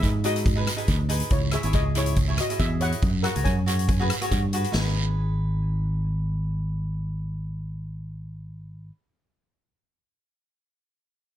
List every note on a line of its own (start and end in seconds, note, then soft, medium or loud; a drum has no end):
0.00 0.68 G#2 loud
0.00 0.11 D#4 medium
0.00 0.11 G#4 medium
0.00 0.22 G#4 medium
0.00 0.12 B4 medium
0.00 0.22 E5 loud
0.00 kick medium
0.00 closed hi-hat medium
0.00 short guiro medium
0.24 0.44 D#4 medium
0.24 0.65 F#4 medium
0.24 0.44 G#4 medium
0.24 0.44 B4 medium
0.24 0.65 D#5 medium
0.24 closed hi-hat loud
0.24 short guiro medium
0.36 closed hi-hat medium
0.46 kick loud
0.46 closed hi-hat medium
0.46 long guiro medium
0.56 0.69 D#4 medium
0.56 0.69 G#4 medium
0.56 0.70 B4 medium
0.67 cross-stick loud
0.67 closed hi-hat loud
0.76 0.97 D#4 medium
0.76 0.97 G#4 medium
0.76 0.98 B4 loud
0.76 closed hi-hat medium
0.88 1.21 D2 loud
0.88 kick medium
0.88 closed hi-hat medium
0.88 short guiro medium
1.09 1.31 D#4 medium
1.09 1.31 G#4 medium
1.09 1.32 B4 loud
1.09 closed hi-hat loud
1.20 closed hi-hat medium
1.30 1.56 C#2 loud
1.30 1.52 E4 medium
1.30 1.54 C#5 medium
1.30 kick loud
1.30 closed hi-hat medium
1.30 long guiro medium
1.51 1.59 E4 medium
1.51 1.60 G#4 medium
1.51 1.73 G#4 medium
1.51 1.60 C#5 medium
1.51 1.76 E5 medium
1.51 cross-stick medium
1.51 closed hi-hat medium
1.51 short guiro medium
1.63 1.72 G#1 medium
1.63 1.83 E4 medium
1.63 1.83 G#4 medium
1.63 1.84 C#5 medium
1.63 closed hi-hat medium
1.73 2.39 C#2 loud
1.73 1.84 G#4 medium
1.73 1.84 D#5 medium
1.73 kick medium
1.73 closed hi-hat medium
1.73 short guiro medium
1.95 2.15 E4 medium
1.95 2.36 E4 medium
1.95 2.16 G#4 medium
1.95 2.16 C#5 medium
1.95 2.41 C#5 medium
1.95 closed hi-hat medium
1.95 short guiro medium
2.06 closed hi-hat medium
2.16 kick loud
2.16 closed hi-hat medium
2.16 long guiro medium
2.28 2.41 E4 medium
2.28 2.41 G#4 medium
2.28 2.42 C#5 medium
2.38 2.59 F#4 medium
2.38 2.62 D#5 medium
2.38 cross-stick medium
2.38 closed hi-hat medium
2.49 2.69 E4 medium
2.49 2.69 G#4 medium
2.49 2.70 D#5 medium
2.49 closed hi-hat medium
2.60 2.92 E2 loud
2.60 2.80 G#4 medium
2.60 2.82 E5 loud
2.60 kick medium
2.60 closed hi-hat medium
2.60 short guiro medium
2.81 3.03 E4 medium
2.81 3.03 G#4 medium
2.81 3.21 C#5 medium
2.81 3.04 D#5 medium
2.81 3.22 F#5 medium
2.81 closed hi-hat medium
2.92 closed hi-hat medium
3.02 3.27 F#2 loud
3.02 kick loud
3.02 closed hi-hat medium
3.02 long guiro medium
3.23 3.31 F#4 medium
3.23 3.31 G#4 medium
3.23 3.33 A#4 medium
3.23 3.32 C#5 medium
3.23 3.33 F#5 loud
3.23 cross-stick medium
3.23 closed hi-hat medium
3.23 short guiro medium
3.35 3.44 C#2 medium
3.35 3.54 F#4 medium
3.35 3.55 G#4 medium
3.35 3.55 C#5 medium
3.35 closed hi-hat medium
3.44 4.10 F#2 loud
3.44 3.85 C#5 medium
3.44 3.85 G#5 loud
3.44 kick medium
3.44 closed hi-hat medium
3.44 short guiro medium
3.66 3.86 F#4 medium
3.66 3.86 G#4 medium
3.66 3.87 C#5 medium
3.66 closed hi-hat medium
3.66 short guiro medium
3.79 closed hi-hat medium
3.89 kick loud
3.89 closed hi-hat medium
3.89 long guiro medium
4.00 4.12 F#4 medium
4.00 4.13 G#4 medium
4.00 4.13 B4 loud
4.10 cross-stick medium
4.10 closed hi-hat medium
4.21 4.41 F#4 loud
4.21 4.41 G#4 medium
4.21 4.41 C#5 medium
4.21 cross-stick medium
4.21 closed hi-hat medium
4.31 4.64 G2 loud
4.31 kick medium
4.31 closed hi-hat medium
4.31 short guiro medium
4.53 4.72 F#4 medium
4.53 4.74 G#4 medium
4.53 4.75 B4 loud
4.53 closed hi-hat medium
4.64 closed hi-hat medium
4.72 8.90 G#1 loud
4.72 8.88 D#4 medium
4.72 8.91 G#4 medium
4.72 snare medium
4.72 long guiro medium
4.79 8.94 B4 medium